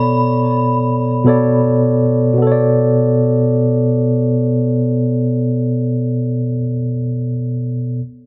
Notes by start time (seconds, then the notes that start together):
Already playing: B2 B3 A4 C#5 D5 B5
1.24 B2 B3 A4 C#5
1.29 D5
2.33 B2
2.38 B3
2.42 A4
2.47 C#5
2.52 D5